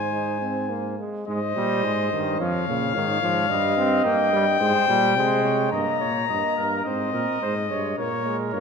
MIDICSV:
0, 0, Header, 1, 5, 480
1, 0, Start_track
1, 0, Key_signature, -4, "major"
1, 0, Tempo, 569801
1, 1082, Time_signature, 4, 2, 24, 8
1, 1557, Tempo, 552486
1, 4437, Tempo, 562852
1, 7369, End_track
2, 0, Start_track
2, 0, Title_t, "Trumpet"
2, 0, Program_c, 0, 56
2, 0, Note_on_c, 0, 80, 73
2, 838, Note_off_c, 0, 80, 0
2, 1077, Note_on_c, 0, 75, 77
2, 2005, Note_off_c, 0, 75, 0
2, 2042, Note_on_c, 0, 77, 86
2, 3442, Note_off_c, 0, 77, 0
2, 3469, Note_on_c, 0, 79, 95
2, 4886, Note_off_c, 0, 79, 0
2, 4911, Note_on_c, 0, 82, 71
2, 5837, Note_off_c, 0, 82, 0
2, 5873, Note_on_c, 0, 75, 72
2, 6816, Note_off_c, 0, 75, 0
2, 6844, Note_on_c, 0, 73, 73
2, 7175, Note_off_c, 0, 73, 0
2, 7315, Note_on_c, 0, 73, 66
2, 7369, Note_off_c, 0, 73, 0
2, 7369, End_track
3, 0, Start_track
3, 0, Title_t, "Flugelhorn"
3, 0, Program_c, 1, 56
3, 0, Note_on_c, 1, 72, 68
3, 805, Note_off_c, 1, 72, 0
3, 1083, Note_on_c, 1, 72, 76
3, 2042, Note_on_c, 1, 73, 69
3, 2056, Note_off_c, 1, 72, 0
3, 2513, Note_off_c, 1, 73, 0
3, 2519, Note_on_c, 1, 73, 70
3, 2989, Note_on_c, 1, 75, 86
3, 3002, Note_off_c, 1, 73, 0
3, 3943, Note_off_c, 1, 75, 0
3, 3949, Note_on_c, 1, 72, 79
3, 4424, Note_off_c, 1, 72, 0
3, 4436, Note_on_c, 1, 72, 68
3, 4666, Note_off_c, 1, 72, 0
3, 4671, Note_on_c, 1, 73, 71
3, 4909, Note_off_c, 1, 73, 0
3, 4913, Note_on_c, 1, 75, 74
3, 5138, Note_off_c, 1, 75, 0
3, 5151, Note_on_c, 1, 73, 69
3, 5384, Note_off_c, 1, 73, 0
3, 5389, Note_on_c, 1, 75, 74
3, 5627, Note_off_c, 1, 75, 0
3, 5631, Note_on_c, 1, 70, 74
3, 5867, Note_off_c, 1, 70, 0
3, 5877, Note_on_c, 1, 72, 68
3, 6104, Note_off_c, 1, 72, 0
3, 6109, Note_on_c, 1, 70, 65
3, 6348, Note_off_c, 1, 70, 0
3, 6362, Note_on_c, 1, 72, 69
3, 6468, Note_off_c, 1, 72, 0
3, 6605, Note_on_c, 1, 73, 73
3, 6836, Note_off_c, 1, 73, 0
3, 6842, Note_on_c, 1, 70, 70
3, 7369, Note_off_c, 1, 70, 0
3, 7369, End_track
4, 0, Start_track
4, 0, Title_t, "Trombone"
4, 0, Program_c, 2, 57
4, 0, Note_on_c, 2, 56, 61
4, 105, Note_off_c, 2, 56, 0
4, 110, Note_on_c, 2, 63, 67
4, 346, Note_off_c, 2, 63, 0
4, 351, Note_on_c, 2, 60, 68
4, 586, Note_on_c, 2, 58, 71
4, 599, Note_off_c, 2, 60, 0
4, 831, Note_off_c, 2, 58, 0
4, 836, Note_on_c, 2, 56, 64
4, 1068, Note_off_c, 2, 56, 0
4, 1073, Note_on_c, 2, 56, 80
4, 1182, Note_off_c, 2, 56, 0
4, 1312, Note_on_c, 2, 55, 89
4, 1551, Note_on_c, 2, 56, 89
4, 1563, Note_off_c, 2, 55, 0
4, 1788, Note_off_c, 2, 56, 0
4, 1793, Note_on_c, 2, 51, 85
4, 2036, Note_on_c, 2, 53, 95
4, 2049, Note_off_c, 2, 51, 0
4, 2273, Note_off_c, 2, 53, 0
4, 2278, Note_on_c, 2, 49, 86
4, 2514, Note_off_c, 2, 49, 0
4, 2519, Note_on_c, 2, 51, 90
4, 2748, Note_off_c, 2, 51, 0
4, 2754, Note_on_c, 2, 53, 95
4, 2980, Note_off_c, 2, 53, 0
4, 2985, Note_on_c, 2, 55, 83
4, 3222, Note_off_c, 2, 55, 0
4, 3229, Note_on_c, 2, 60, 99
4, 3472, Note_on_c, 2, 58, 90
4, 3485, Note_off_c, 2, 60, 0
4, 3708, Note_off_c, 2, 58, 0
4, 3713, Note_on_c, 2, 55, 99
4, 3821, Note_off_c, 2, 55, 0
4, 3957, Note_on_c, 2, 56, 96
4, 4191, Note_off_c, 2, 56, 0
4, 4195, Note_on_c, 2, 55, 98
4, 4432, Note_off_c, 2, 55, 0
4, 4446, Note_on_c, 2, 56, 102
4, 4911, Note_off_c, 2, 56, 0
4, 4928, Note_on_c, 2, 58, 68
4, 5369, Note_off_c, 2, 58, 0
4, 5411, Note_on_c, 2, 58, 63
4, 5872, Note_off_c, 2, 58, 0
4, 5878, Note_on_c, 2, 60, 67
4, 6348, Note_off_c, 2, 60, 0
4, 6361, Note_on_c, 2, 56, 66
4, 6829, Note_off_c, 2, 56, 0
4, 6838, Note_on_c, 2, 58, 72
4, 7067, Note_off_c, 2, 58, 0
4, 7072, Note_on_c, 2, 56, 80
4, 7309, Note_off_c, 2, 56, 0
4, 7318, Note_on_c, 2, 58, 74
4, 7369, Note_off_c, 2, 58, 0
4, 7369, End_track
5, 0, Start_track
5, 0, Title_t, "Tuba"
5, 0, Program_c, 3, 58
5, 0, Note_on_c, 3, 44, 69
5, 805, Note_off_c, 3, 44, 0
5, 1083, Note_on_c, 3, 44, 70
5, 1304, Note_off_c, 3, 44, 0
5, 1317, Note_on_c, 3, 46, 72
5, 1556, Note_on_c, 3, 44, 69
5, 1569, Note_off_c, 3, 46, 0
5, 1795, Note_off_c, 3, 44, 0
5, 1800, Note_on_c, 3, 43, 66
5, 2034, Note_off_c, 3, 43, 0
5, 2039, Note_on_c, 3, 41, 68
5, 2274, Note_off_c, 3, 41, 0
5, 2279, Note_on_c, 3, 46, 77
5, 2521, Note_on_c, 3, 44, 71
5, 2534, Note_off_c, 3, 46, 0
5, 2750, Note_off_c, 3, 44, 0
5, 2755, Note_on_c, 3, 44, 67
5, 2988, Note_off_c, 3, 44, 0
5, 2992, Note_on_c, 3, 43, 76
5, 3461, Note_off_c, 3, 43, 0
5, 3473, Note_on_c, 3, 43, 70
5, 3944, Note_off_c, 3, 43, 0
5, 3958, Note_on_c, 3, 44, 71
5, 4065, Note_off_c, 3, 44, 0
5, 4196, Note_on_c, 3, 46, 81
5, 4441, Note_on_c, 3, 48, 72
5, 4454, Note_off_c, 3, 46, 0
5, 4913, Note_off_c, 3, 48, 0
5, 4918, Note_on_c, 3, 43, 67
5, 5026, Note_off_c, 3, 43, 0
5, 5161, Note_on_c, 3, 46, 59
5, 5394, Note_off_c, 3, 46, 0
5, 5404, Note_on_c, 3, 43, 58
5, 5509, Note_off_c, 3, 43, 0
5, 5641, Note_on_c, 3, 43, 61
5, 5872, Note_off_c, 3, 43, 0
5, 5878, Note_on_c, 3, 44, 59
5, 6112, Note_off_c, 3, 44, 0
5, 6119, Note_on_c, 3, 46, 71
5, 6227, Note_off_c, 3, 46, 0
5, 6361, Note_on_c, 3, 44, 62
5, 6600, Note_on_c, 3, 43, 65
5, 6612, Note_off_c, 3, 44, 0
5, 6834, Note_off_c, 3, 43, 0
5, 6839, Note_on_c, 3, 46, 68
5, 7316, Note_on_c, 3, 43, 66
5, 7328, Note_off_c, 3, 46, 0
5, 7369, Note_off_c, 3, 43, 0
5, 7369, End_track
0, 0, End_of_file